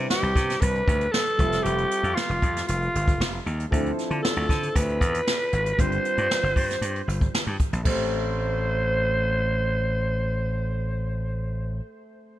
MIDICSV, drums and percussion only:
0, 0, Header, 1, 2, 480
1, 0, Start_track
1, 0, Key_signature, 0, "minor"
1, 0, Tempo, 516929
1, 1530, Time_signature, 4, 2, 24, 8
1, 11508, End_track
2, 0, Start_track
2, 0, Title_t, "Drums"
2, 95, Note_on_c, 9, 38, 114
2, 188, Note_off_c, 9, 38, 0
2, 218, Note_on_c, 9, 42, 35
2, 311, Note_off_c, 9, 42, 0
2, 330, Note_on_c, 9, 36, 84
2, 336, Note_on_c, 9, 42, 75
2, 339, Note_on_c, 9, 38, 36
2, 423, Note_off_c, 9, 36, 0
2, 429, Note_off_c, 9, 42, 0
2, 432, Note_off_c, 9, 38, 0
2, 461, Note_on_c, 9, 42, 62
2, 465, Note_on_c, 9, 38, 34
2, 554, Note_off_c, 9, 42, 0
2, 557, Note_off_c, 9, 38, 0
2, 573, Note_on_c, 9, 42, 112
2, 575, Note_on_c, 9, 36, 100
2, 666, Note_off_c, 9, 42, 0
2, 668, Note_off_c, 9, 36, 0
2, 699, Note_on_c, 9, 42, 35
2, 792, Note_off_c, 9, 42, 0
2, 814, Note_on_c, 9, 36, 102
2, 822, Note_on_c, 9, 42, 73
2, 906, Note_off_c, 9, 36, 0
2, 914, Note_off_c, 9, 42, 0
2, 935, Note_on_c, 9, 42, 51
2, 1028, Note_off_c, 9, 42, 0
2, 1057, Note_on_c, 9, 38, 116
2, 1149, Note_off_c, 9, 38, 0
2, 1172, Note_on_c, 9, 42, 37
2, 1265, Note_off_c, 9, 42, 0
2, 1291, Note_on_c, 9, 42, 68
2, 1292, Note_on_c, 9, 36, 96
2, 1384, Note_off_c, 9, 42, 0
2, 1385, Note_off_c, 9, 36, 0
2, 1412, Note_on_c, 9, 42, 55
2, 1417, Note_on_c, 9, 38, 36
2, 1505, Note_off_c, 9, 42, 0
2, 1510, Note_off_c, 9, 38, 0
2, 1534, Note_on_c, 9, 42, 89
2, 1627, Note_off_c, 9, 42, 0
2, 1653, Note_on_c, 9, 42, 38
2, 1746, Note_off_c, 9, 42, 0
2, 1775, Note_on_c, 9, 42, 64
2, 1868, Note_off_c, 9, 42, 0
2, 1893, Note_on_c, 9, 42, 44
2, 1986, Note_off_c, 9, 42, 0
2, 2017, Note_on_c, 9, 38, 110
2, 2110, Note_off_c, 9, 38, 0
2, 2138, Note_on_c, 9, 42, 35
2, 2231, Note_off_c, 9, 42, 0
2, 2251, Note_on_c, 9, 36, 90
2, 2253, Note_on_c, 9, 42, 76
2, 2343, Note_off_c, 9, 36, 0
2, 2346, Note_off_c, 9, 42, 0
2, 2381, Note_on_c, 9, 42, 55
2, 2384, Note_on_c, 9, 38, 36
2, 2473, Note_off_c, 9, 42, 0
2, 2477, Note_off_c, 9, 38, 0
2, 2491, Note_on_c, 9, 42, 108
2, 2584, Note_off_c, 9, 42, 0
2, 2618, Note_on_c, 9, 42, 35
2, 2711, Note_off_c, 9, 42, 0
2, 2742, Note_on_c, 9, 42, 73
2, 2835, Note_off_c, 9, 42, 0
2, 2856, Note_on_c, 9, 36, 91
2, 2859, Note_on_c, 9, 42, 56
2, 2949, Note_off_c, 9, 36, 0
2, 2952, Note_off_c, 9, 42, 0
2, 2983, Note_on_c, 9, 38, 109
2, 3076, Note_off_c, 9, 38, 0
2, 3217, Note_on_c, 9, 42, 66
2, 3310, Note_off_c, 9, 42, 0
2, 3339, Note_on_c, 9, 42, 54
2, 3432, Note_off_c, 9, 42, 0
2, 3456, Note_on_c, 9, 36, 96
2, 3464, Note_on_c, 9, 42, 93
2, 3549, Note_off_c, 9, 36, 0
2, 3557, Note_off_c, 9, 42, 0
2, 3581, Note_on_c, 9, 42, 36
2, 3674, Note_off_c, 9, 42, 0
2, 3699, Note_on_c, 9, 42, 68
2, 3705, Note_on_c, 9, 38, 31
2, 3792, Note_off_c, 9, 42, 0
2, 3798, Note_off_c, 9, 38, 0
2, 3812, Note_on_c, 9, 42, 43
2, 3905, Note_off_c, 9, 42, 0
2, 3943, Note_on_c, 9, 38, 112
2, 4036, Note_off_c, 9, 38, 0
2, 4060, Note_on_c, 9, 42, 36
2, 4153, Note_off_c, 9, 42, 0
2, 4171, Note_on_c, 9, 36, 85
2, 4178, Note_on_c, 9, 42, 72
2, 4181, Note_on_c, 9, 38, 36
2, 4264, Note_off_c, 9, 36, 0
2, 4271, Note_off_c, 9, 42, 0
2, 4274, Note_off_c, 9, 38, 0
2, 4298, Note_on_c, 9, 42, 55
2, 4391, Note_off_c, 9, 42, 0
2, 4415, Note_on_c, 9, 36, 90
2, 4416, Note_on_c, 9, 42, 115
2, 4508, Note_off_c, 9, 36, 0
2, 4509, Note_off_c, 9, 42, 0
2, 4539, Note_on_c, 9, 42, 32
2, 4632, Note_off_c, 9, 42, 0
2, 4653, Note_on_c, 9, 36, 93
2, 4658, Note_on_c, 9, 42, 73
2, 4746, Note_off_c, 9, 36, 0
2, 4751, Note_off_c, 9, 42, 0
2, 4776, Note_on_c, 9, 42, 53
2, 4869, Note_off_c, 9, 42, 0
2, 4897, Note_on_c, 9, 38, 118
2, 4990, Note_off_c, 9, 38, 0
2, 5013, Note_on_c, 9, 42, 37
2, 5106, Note_off_c, 9, 42, 0
2, 5130, Note_on_c, 9, 42, 61
2, 5223, Note_off_c, 9, 42, 0
2, 5255, Note_on_c, 9, 42, 57
2, 5348, Note_off_c, 9, 42, 0
2, 5374, Note_on_c, 9, 36, 96
2, 5377, Note_on_c, 9, 42, 88
2, 5467, Note_off_c, 9, 36, 0
2, 5470, Note_off_c, 9, 42, 0
2, 5494, Note_on_c, 9, 42, 36
2, 5587, Note_off_c, 9, 42, 0
2, 5618, Note_on_c, 9, 42, 61
2, 5710, Note_off_c, 9, 42, 0
2, 5735, Note_on_c, 9, 42, 46
2, 5827, Note_off_c, 9, 42, 0
2, 5861, Note_on_c, 9, 38, 108
2, 5954, Note_off_c, 9, 38, 0
2, 5982, Note_on_c, 9, 42, 34
2, 6075, Note_off_c, 9, 42, 0
2, 6092, Note_on_c, 9, 36, 76
2, 6097, Note_on_c, 9, 46, 75
2, 6185, Note_off_c, 9, 36, 0
2, 6190, Note_off_c, 9, 46, 0
2, 6224, Note_on_c, 9, 42, 56
2, 6227, Note_on_c, 9, 38, 33
2, 6317, Note_off_c, 9, 42, 0
2, 6320, Note_off_c, 9, 38, 0
2, 6334, Note_on_c, 9, 42, 113
2, 6426, Note_off_c, 9, 42, 0
2, 6458, Note_on_c, 9, 42, 34
2, 6551, Note_off_c, 9, 42, 0
2, 6584, Note_on_c, 9, 42, 71
2, 6677, Note_off_c, 9, 42, 0
2, 6698, Note_on_c, 9, 36, 80
2, 6702, Note_on_c, 9, 42, 50
2, 6791, Note_off_c, 9, 36, 0
2, 6795, Note_off_c, 9, 42, 0
2, 6821, Note_on_c, 9, 38, 107
2, 6913, Note_off_c, 9, 38, 0
2, 6933, Note_on_c, 9, 42, 33
2, 7026, Note_off_c, 9, 42, 0
2, 7050, Note_on_c, 9, 42, 66
2, 7055, Note_on_c, 9, 36, 89
2, 7143, Note_off_c, 9, 42, 0
2, 7148, Note_off_c, 9, 36, 0
2, 7176, Note_on_c, 9, 42, 54
2, 7269, Note_off_c, 9, 42, 0
2, 7291, Note_on_c, 9, 49, 81
2, 7293, Note_on_c, 9, 36, 100
2, 7384, Note_off_c, 9, 49, 0
2, 7386, Note_off_c, 9, 36, 0
2, 11508, End_track
0, 0, End_of_file